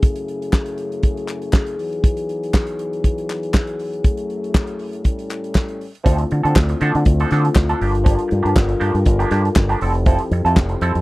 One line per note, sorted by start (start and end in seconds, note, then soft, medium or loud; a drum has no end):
0.00 1.77 F#2 medium
0.00 1.76 C#3 medium
0.00 1.76 A3 medium
0.00 1.76 E4 medium
0.00 5.01 G#4 medium
0.00 kick loud
0.00 closed hi-hat medium
0.16 closed hi-hat soft
0.28 closed hi-hat soft
0.42 closed hi-hat soft
0.53 kick loud
0.53 snare loud
0.53 clap medium
0.66 closed hi-hat medium
0.78 closed hi-hat medium
0.92 closed hi-hat soft
1.03 kick loud
1.03 closed hi-hat medium
1.17 closed hi-hat soft
1.28 clap medium
1.28 closed hi-hat medium
1.42 closed hi-hat soft
1.53 kick loud
1.53 snare medium
1.53 clap medium
1.66 closed hi-hat soft
1.77 4.02 E2 medium
1.77 4.02 E3 medium
1.77 5.02 F#3 medium
1.77 4.02 D#4 medium
1.77 open hi-hat medium
1.93 closed hi-hat soft
2.04 kick loud
2.04 closed hi-hat medium
2.17 closed hi-hat medium
2.29 closed hi-hat soft
2.43 closed hi-hat soft
2.54 kick loud
2.54 snare loud
2.54 clap medium
2.54 clap loud
2.67 closed hi-hat medium
2.79 closed hi-hat medium
2.93 closed hi-hat soft
3.04 kick loud
3.04 closed hi-hat medium
3.18 closed hi-hat soft
3.29 snare soft
3.29 clap medium
3.29 closed hi-hat medium
3.43 closed hi-hat soft
3.54 kick loud
3.54 snare loud
3.54 clap loud
3.54 clap medium
3.67 closed hi-hat soft
3.79 open hi-hat medium
3.93 closed hi-hat soft
4.04 5.04 F#2 medium
4.04 5.04 A3 medium
4.04 5.89 E4 medium
4.04 kick loud
4.04 closed hi-hat medium
4.17 closed hi-hat medium
4.30 closed hi-hat soft
4.44 closed hi-hat soft
4.55 kick loud
4.55 snare loud
4.55 clap medium
4.55 clap loud
4.67 closed hi-hat medium
4.79 open hi-hat medium
4.93 closed hi-hat soft
5.04 5.89 A2 medium
5.04 5.89 G3 medium
5.04 5.89 C#4 medium
5.04 5.89 A4 medium
5.04 kick loud
5.04 closed hi-hat medium
5.19 closed hi-hat soft
5.30 clap medium
5.30 closed hi-hat medium
5.44 closed hi-hat soft
5.55 kick medium
5.55 snare loud
5.55 clap medium
5.68 closed hi-hat soft
5.81 open hi-hat medium
5.95 closed hi-hat soft
6.04 6.23 D2 loud
6.04 7.79 D3 medium
6.04 6.19 F3 medium
6.04 7.79 A3 medium
6.04 6.19 C4 medium
6.04 7.79 C4 medium
6.04 6.18 D4 loud
6.04 7.80 E4 medium
6.04 9.78 F4 medium
6.04 6.18 A4 medium
6.04 kick loud
6.04 closed hi-hat medium
6.18 muted clean electric guitar stroke soft
6.18 closed hi-hat medium
6.31 6.40 D3 loud
6.31 muted clean electric guitar stroke soft
6.31 closed hi-hat medium
6.43 6.53 D3 loud
6.43 6.55 F3 medium
6.43 6.54 C4 medium
6.43 6.54 D4 medium
6.43 6.54 A4 medium
6.43 closed hi-hat soft
6.56 6.73 D2 loud
6.56 kick loud
6.56 snare loud
6.56 clap loud
6.69 muted clean electric guitar stroke medium
6.69 closed hi-hat medium
6.81 6.90 D3 loud
6.81 6.95 F3 medium
6.81 6.95 C4 loud
6.81 6.95 D4 loud
6.81 6.94 A4 medium
6.81 closed hi-hat medium
6.95 7.03 D3 loud
6.95 muted clean electric guitar stroke soft
6.95 closed hi-hat medium
7.05 7.23 D2 loud
7.05 muted clean electric guitar stroke soft
7.05 kick loud
7.05 closed hi-hat medium
7.20 7.30 F3 medium
7.20 7.30 C4 medium
7.20 7.30 D4 medium
7.20 7.30 A4 medium
7.20 closed hi-hat medium
7.31 7.48 D3 medium
7.31 7.46 F3 medium
7.31 7.44 C4 medium
7.31 7.43 D4 medium
7.31 7.43 A4 loud
7.31 snare soft
7.31 closed hi-hat medium
7.44 muted clean electric guitar stroke soft
7.44 closed hi-hat medium
7.55 7.73 D2 loud
7.55 muted clean electric guitar stroke soft
7.55 kick loud
7.55 snare loud
7.55 clap loud
7.55 clap medium
7.69 7.79 F3 medium
7.69 7.81 C4 medium
7.69 7.81 D4 medium
7.69 7.82 A4 medium
7.69 closed hi-hat soft
7.81 8.16 G1 medium
7.81 7.92 F3 medium
7.81 9.80 G3 medium
7.81 7.92 A#3 medium
7.81 7.93 D4 medium
7.81 9.80 D4 medium
7.81 7.92 G4 medium
7.81 11.02 A4 medium
7.81 9.80 A#4 loud
7.81 open hi-hat medium
7.93 muted clean electric guitar stroke soft
7.93 closed hi-hat medium
8.04 8.19 F3 medium
8.04 8.17 A#3 medium
8.04 8.17 D4 medium
8.04 8.16 G4 medium
8.04 kick loud
8.04 closed hi-hat loud
8.17 muted clean electric guitar stroke soft
8.17 closed hi-hat medium
8.28 8.41 G2 loud
8.28 muted clean electric guitar stroke soft
8.28 closed hi-hat medium
8.43 8.53 G2 loud
8.43 8.54 F3 medium
8.43 8.54 A#3 medium
8.43 8.54 D4 medium
8.43 8.54 G4 medium
8.43 closed hi-hat soft
8.56 8.74 G1 loud
8.56 kick loud
8.56 snare loud
8.56 clap loud
8.68 muted clean electric guitar stroke medium
8.68 closed hi-hat medium
8.80 8.90 G2 medium
8.80 8.95 F3 medium
8.80 8.94 A#3 medium
8.80 8.94 D4 medium
8.80 8.93 G4 medium
8.80 closed hi-hat medium
8.94 9.03 G2 loud
8.94 muted clean electric guitar stroke soft
8.94 closed hi-hat medium
9.06 9.24 G1 loud
9.06 muted clean electric guitar stroke soft
9.06 kick loud
9.06 closed hi-hat medium
9.19 9.29 F3 medium
9.19 9.30 A#3 medium
9.19 9.30 D4 medium
9.19 9.29 G4 medium
9.19 closed hi-hat medium
9.30 9.48 G2 loud
9.30 9.45 F3 loud
9.30 9.44 A#3 medium
9.30 9.44 D4 loud
9.30 9.43 G4 loud
9.30 snare soft
9.30 closed hi-hat medium
9.44 muted clean electric guitar stroke soft
9.44 closed hi-hat soft
9.56 9.74 G1 loud
9.56 muted clean electric guitar stroke soft
9.56 kick loud
9.56 snare loud
9.56 clap loud
9.56 clap medium
9.69 9.80 F3 medium
9.69 9.82 A#3 medium
9.69 9.82 D4 medium
9.69 9.82 G4 medium
9.69 closed hi-hat soft
9.81 10.16 F1 loud
9.81 9.93 F3 medium
9.81 11.02 F3 medium
9.81 11.02 C4 medium
9.81 9.93 C4 medium
9.81 9.93 E4 medium
9.81 11.02 E4 medium
9.81 11.02 G4 medium
9.81 9.93 A4 medium
9.81 open hi-hat medium
9.95 closed hi-hat medium
10.06 10.21 F3 medium
10.06 10.20 C4 loud
10.06 10.19 E4 loud
10.06 10.19 A4 loud
10.06 kick loud
10.06 closed hi-hat medium
10.18 muted clean electric guitar stroke soft
10.18 closed hi-hat medium
10.31 10.40 F2 loud
10.31 muted clean electric guitar stroke soft
10.31 closed hi-hat medium
10.45 10.58 F2 loud
10.45 10.55 F3 medium
10.45 10.55 C4 soft
10.45 10.55 E4 medium
10.45 10.55 A4 medium
10.45 closed hi-hat medium
10.56 10.74 F1 loud
10.56 kick loud
10.56 snare loud
10.56 clap medium
10.56 clap loud
10.69 muted clean electric guitar stroke medium
10.69 closed hi-hat medium
10.81 10.91 F2 loud
10.81 10.96 F3 loud
10.81 10.95 C4 medium
10.81 10.94 E4 medium
10.81 10.94 A4 loud
10.81 closed hi-hat medium
10.95 11.02 F2 loud
10.95 muted clean electric guitar stroke soft
10.95 closed hi-hat medium